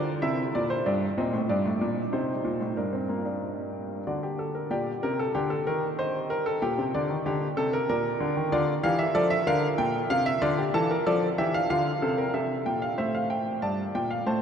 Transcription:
Already playing: D3 F4 D5
0.22 C3 E4 E5
0.55 A#2 D5
0.70 C5
0.86 G2 D4 D5
1.18 A#2 C4 D#5
1.33 A2
1.49 G2 D4 D5
1.65 A2
1.81 A#2
2.12 C3 D#4 C5
2.44 A#2
2.61 A2
2.77 G2 D4 A#4
2.93 C4
3.09 A#3
3.25 D4
4.07 D3 F#4 D5
4.23 G4
4.39 A4
4.55 A#4
4.70 A#2 G4 D5
5.03 C3 A#4
5.19 A4
5.35 D3 G4
5.50 A4
5.67 D#3 A#4
5.99 C5 D#5
6.30 A#4
6.46 A4
6.62 A#2 G4 G5
6.78 C3
6.94 D3 D5
7.10 D#3
7.26 D3 G4
7.57 C3 A4
7.73 A#4
7.89 A#2 A#4 D5
8.20 D3
8.36 D#3
8.52 D3 F4 D5
8.83 E3 G4 F5
8.99 E5
9.15 F3 A4 D5
9.30 E5
9.47 D3 A#4 F5
9.78 A#2 G5
10.10 C3 F5
10.26 E5
10.42 D3 F4 D5
10.58 G4
10.74 E3 A4 A5
10.91 A#4
11.07 F3 A4 D5
11.38 E3 G4 E5
11.54 F5
11.70 D3 F4 F5
12.02 C3 A4
12.18 A#4
12.34 C3 A4 E5
12.66 A#2 G5
12.82 F5
12.98 A2 C5 E5
13.15 F5
13.30 G5
13.62 G2 D5 A5
13.95 A#2 G5
14.11 F5
14.26 A2 C5 A5

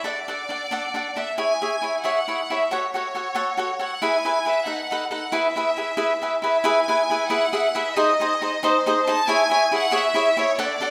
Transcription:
0.04 D4 A4 D5 F#5
0.28 D4 A4 D5 F#5
0.49 D4 A4 D5 F#5
0.71 D4 A4 D5 F#5
0.94 D4 A4 D5 F#5
1.16 D4 A4 D5 E5 F#5
1.38 E4 G#4 C#5 E5 G#5
1.61 E4 G#4 C#5 E5
1.82 E4 G#4 C#5 E5
2.04 E4 G#4 C#5 E5 F#5
2.28 E4 G#4 C#5 E5
2.50 E4 G#4 C#5 E5
2.71 F#4 A4 C#5 F#5
2.94 F#4 A4 C#5 F#5
3.15 F#4 A4 C#5 F#5
3.35 F#4 A4 C#5 F#5
3.57 F#4 A4 C#5 F#5
3.79 F#4 A4 C#5 F#5
4.02 E4 G#4 B4 E5 G#5
4.25 E4 G#4 B4 E5
4.45 E4 G#4 B4 E5
4.66 D#4 A4 B4 F#5
4.91 D#4 A4 B4 F#5
5.10 D#4 A4 B4 F#5
5.32 E4 G#4 B4 E5
5.56 E4 G#4 B4 E5
5.77 E4 G#4 B4 E5
5.97 E4 G#4 B4 E5
6.22 E4 G#4 B4 E5
6.42 E4 G#4 B4 E5
6.63 E4 G#4 B4 E5 G#5
6.88 E4 G#4 B4 E5
7.10 E4 G#4 B4 E5
7.29 E4 G#4 B4 E5 F#5
7.53 E4 G#4 B4 E5
7.74 E4 G#4 B4 E5
7.93 D#4 G#4 D#5
7.97 C5
8.20 D#4 G#4 C5 D#5
8.41 D#4 G#4 C5 D#5
8.61 D#4 G#4 C5 D#5
8.86 D#4 G#4 C5 D#5
9.06 D#4 G#4 C5 D#5 A5
9.27 E4 G#4 C#5 E5 G#5
9.50 E4 G#4 C#5 E5
9.71 E4 G#4 C#5 E5 F#5
9.91 E4 G#4 C#5 E5
10.14 E4 G#4 C#5 E5
10.37 E4 G#4 C#5 E5
10.59 D4 A4 D5 F#5
10.81 D4 A4 D5 F#5

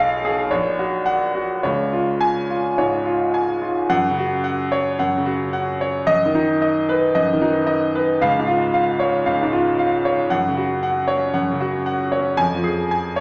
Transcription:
Already playing: B1 G#4 C#5
0.00 F5
0.25 G#4
0.51 A#1 C#5
0.79 F#4
1.06 F#5
1.35 F#4
1.63 C#2 C#5
1.93 F4
2.21 G#5
2.50 F4
2.78 G#2 C#5
3.06 F4
3.34 G#5
3.62 F4
3.90 F#2 F#5
4.09 C#3
4.19 F#4
4.44 F#5
4.72 C#5
4.99 F#2 F#5
5.17 C#3
5.26 F#4
5.53 F#5
5.81 C#5
6.07 F#2 D#5
6.25 D#3
6.35 D#4
6.62 D#5
6.89 B4
7.15 F#2 D#5
7.33 D#3
7.41 D#4
7.67 D#5
7.95 B4
8.21 C#2 F5
8.39 G#2
8.47 F4
8.74 F5
9.00 C#5
9.26 C#2 F5
9.43 G#2
9.53 F4
9.79 F5
10.05 C#5
10.30 F#2 F#5
10.48 C#3
10.57 F#4
10.83 F#5
11.08 C#5
11.17 C#4
11.34 F#2 F#5
11.51 C#3
11.61 F#4
11.86 F#5
12.12 C#5
12.19 C#4
12.37 F2 G#5
12.54 F3
12.64 G#4
12.91 G#5
13.16 C#5

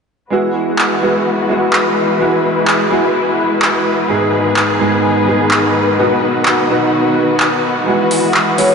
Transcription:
0.30 E3 G#3 B3 E4 F#4 B4
0.79 clap
1.02 G#3 B3 E4 F#4
1.48 G#3 B3 E4 F#4
1.73 clap
2.19 G#3 B3 E4 F#4
2.68 clap
2.90 G#3 B3 E4 F#4
3.62 clap
4.08 G#2 D#3 G#3 B3 D#4 G#4
4.56 clap
4.80 G#2 G#3 B3 D#4 G#4
5.26 G#2 G#3 B3 D#4 G#4
5.51 clap
5.97 B2 F#3 B3 D#4 F#4
6.45 clap
6.68 B2 F#3 B3 D#4 F#4
7.40 clap
7.86 E3 G#3 B3 E4 F#4 B4
8.11 open hi-hat
8.34 clap
8.58 G#3 B3 E4 F#4 C#5, open hi-hat
8.70 C#5

